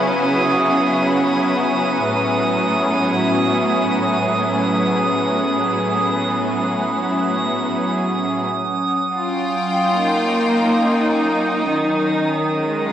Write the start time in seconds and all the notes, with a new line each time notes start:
Already playing: C#3 F#3 B3 C#4 E4 G#4 D#6
2.04 A2
9.15 F4
9.26 G5
9.92 A#3 D#4
11.67 D#3
12.59 G#3
12.84 F4